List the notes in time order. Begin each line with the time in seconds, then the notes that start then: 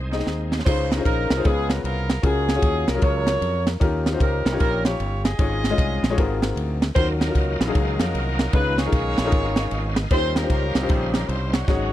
Already playing: C2 G#3 C4 D#4 C5
0.11 C4 D#4 G#4 D#5, snare
0.20 snare
0.27 D#2, snare
0.52 snare
0.59 snare
0.65 C#2 C#3 C#4 D#4 F4 G#4 C5, kick, crash
0.90 A#4, snare, ride
0.98 C#4 D#4 F4 G#4 C5
1.05 A#1 D#4 F4 A#4, kick, ride
1.30 C2, snare, ride
1.37 C#4 D#4 F4 G#4 C5
1.44 C#2 C#3 B3 C#4 F4 G#4 B4, kick, ride
1.70 A#4, snare, ride
1.84 C2 F4 A#4, ride
2.10 snare, ride
2.22 C#2 C#3 C#4 F4 F#4 G#4 A#4, kick, ride
2.49 snare, ride
2.55 C#4 F4 F#4 G#4 C#5
2.62 D#2, kick, ride
2.88 C2 A#4, snare, ride
2.94 F#3 C#4 F4 G#4 A#4
3.02 C#2 F4 A#4 C#5, kick, ride
3.27 snare, ride
3.41 F2, ride
3.67 snare, ride
3.80 D#2 D#3 C#4 D#4 F4 G4 A#4, kick, ride
4.06 snare, ride
4.12 C#4 D#4 F4 F#4 C5
4.18 C#2 G4 A#4, kick, ride
4.22 C#4 G4
4.45 C2, snare, ride
4.52 C#4 D#4 F4 G4 C#5
4.60 A#1 C#4 G4 A#4, kick, ride
4.85 F4 G4 C#5, snare, ride
5.00 G1, ride
5.25 G#4 D#5, snare, ride
5.38 G#1 G#2 G#3 C#4 F4 G#4 C#5, kick, ride
5.64 snare, ride
5.70 G#3 C#4 F4 G#4 D#5
5.78 C2, kick, ride
6.03 A#1, snare, ride
6.09 G#3 C#4 F4 G#4 C#5
6.17 G#1 G#2 C4 F4 F#4 G#4 A#4, kick, ride
6.42 snare, ride
6.56 D2, ride
6.82 snare, ride
6.94 D#2 D#3 F#3 A#3 C#4 D#4 F4 F#4 A#4 C5 F5, kick, ride
7.21 A#4, snare, ride
7.28 C#4 D#4 F4 F#4 A#4
7.35 C#2 C#4 F#4 A#4, kick, ride
7.60 A#1, snare, ride
7.67 F#3 C#4 D#4 G#4 F5
7.75 C#2 C#4 F4 G#4, kick, ride
8.00 F2 C#4 F#4 A#4, snare, ride
8.14 C2, ride
8.39 snare, ride
8.52 C#2 C#3 G#3 B3 C#4 D#4 F4 G#4 B4, kick, ride
8.77 F4 G#4 C#5, snare, ride
8.86 C#4 D#4 F4 G#4 A#4
8.92 B1, kick, ride
9.18 A#1, snare, ride
9.25 C#4 D#4 F4 G#4 A#4
9.32 G#1, kick, ride
9.56 snare, ride
9.71 G#1, ride
9.96 snare, ride
10.11 D#2 D#3 G3 C#4 D#4 F4 G4 C5, kick, ride
10.36 A#4, snare, ride
10.42 C#4 D#4 F4 G4 C5
10.50 C#2 C#4 G4 A#4, kick, ride
10.75 C2, snare, ride
10.81 C#3 D#4 F4 G4 C5
10.89 A#1 C4 C#4 G#4, kick, ride
11.14 A#4, snare, ride
11.29 C2 C5, ride
11.53 F#4 C#5, snare, ride
11.67 G#1 G#2 F#3 G#3 C#4 D#4 F#4 G#4 C#5, kick, snare